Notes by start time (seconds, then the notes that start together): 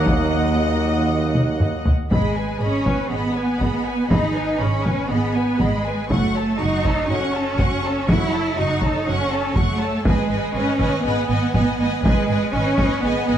Already playing: D#2 F#3 A#3 D#5 F#5
0.06 D#4 D#5, taiko
1.35 taiko mid
1.60 taiko low-mid
1.85 taiko low
2.10 G#1 G#3 G#4 D#5 B5, taiko
2.35 B4 G#5
2.60 G#1 C#4 G#4 D#5 B5
2.85 B4 G#5, taiko
3.10 G#1 B3 G#4 D#5 B5
3.34 B4 G#5
3.59 G#1 G#4 D#5 B5, taiko
3.85 B4 G#5
4.09 G#1 D#4 G#4 D#5 B5, taiko
4.34 B4 G#5
4.60 G#1 C#4 G#4 D#5 B5
4.84 B4 G#5, taiko
5.09 G#1 B3 G#4 D#5 B5
5.35 B4 G#5
5.59 G#1 G#3 G#4 D#5 B5, taiko
5.86 B4 G#5
6.10 F#1 A3 F#4 A4 C#5 F#5 C#6, taiko
6.35 A4 C#5 A5
6.59 F#1 D#4 F#4 F#5 C#6
6.84 A4 C#5 A5, taiko
7.09 F#1 C#4 F#4 A4 C#5 F#5 C#6
7.34 A4 C#5 A5
7.58 F#1 F#4 F#5 C#6, taiko
7.84 A4 C#5 A5
8.08 F#1 E4 F#4 A4 C#5 F#5 C#6, taiko
8.33 A4 C#5 A5
8.57 F#1 D#4 F#4 F#5 C#6
8.82 A4 C#5 A5, taiko
9.07 F#1 C#4 F#4 A4 C#5 F#5 C#6
9.31 A4 C#5 A5
9.55 F#1 A3 F#4 F#5 C#6, taiko
9.80 A4 C#5 A5
10.05 G#1 G#3 G#4 B4 D#5 G#5, taiko
10.30 G#1 B4 D#5 G#5
10.55 G#1 C#4 B4 D#5 G#5
10.78 G#1 B4 D#5 G#5, taiko
11.03 G#1 B3 G#4 B4 D#5 G#5
11.29 G#1 B4 D#5 G#5
11.54 G#1 B4 D#5 G#5, taiko
11.78 G#1 B4 D#5 G#5
12.04 G#1 G#3 G#4 B4 D#5 G#5, taiko
12.28 G#1 B4 D#5 G#5
12.53 G#1 C#4 B4 D#5 G#5
12.78 G#1 B4 D#5 G#5, taiko
13.03 G#1 B3 G#4 B4 D#5 G#5
13.27 G#1 B4 D#5 G#5